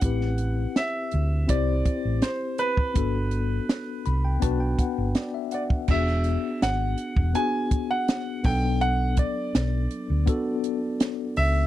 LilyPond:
<<
  \new Staff \with { instrumentName = "Grand piano" } { \time 4/4 \key e \minor \tempo 4 = 82 fis''4 e''4 d''4 c''8 b'8~ | b'2. r8 d''8 | e''4 fis''4 gis''8. fis''8. g''8 | fis''8 d''2. e''8 | }
  \new Staff \with { instrumentName = "Tine electric piano" } { \time 4/4 \key e \minor << { r1 | r4. b''16 g''16 a''16 g''16 fis''8 d''16 e''16 fis''8 | r1 | r1 | } \\ { <c' e' g' b'>4. r8 <c' e' g' c''>4. r8 | <b d' fis' a'>4. r8 <b d' fis' b'>4. r8 | <b d' fis' gis'>4. r8 <b d' fis' gis'>4. <fis b d' a'>8~ | <fis b d' a'>4 r4 <b d' fis' a'>4. r8 | } >> }
  \new Staff \with { instrumentName = "Fingered electric bass" } { \clef bass \time 4/4 \key e \minor a,,4 r8 d,8 c,8 r16 a,,16 r4 | g,,4 r8 c,8 b,,8 r16 g,,16 r4 | e,,8. r16 gis,,8 r16 e,,16 r4. b,,8~ | b,,8. r16 b,,8 r16 d,16 r4. cis,8 | }
  \new DrumStaff \with { instrumentName = "Drums" } \drummode { \time 4/4 <hh bd>16 sn16 hh8 <hh sn>8 hh8 <hh bd>8 <hh bd>8 <hh sn>8 hh16 bd16 | <hh bd>8 hh8 <hh sn>8 hh8 <hh bd>8 <hh bd>8 <hh sn>8 hh16 bd16 | <cymc bd>16 sn16 hh8 <hh sn>8 hh16 bd16 hh8 <hh bd>8 <hh sn>8 <hho bd>8 | hh8 <hh bd>8 <hh sn>8 hh8 <hh bd>8 hh8 <hh sn>8 hho8 | }
>>